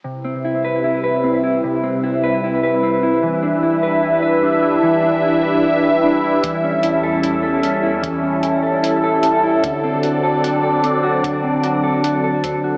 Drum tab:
HH |--------|--------|xxxxxxxx|xxxxxxxx|
BD |--------|--------|o---o---|o---o--o|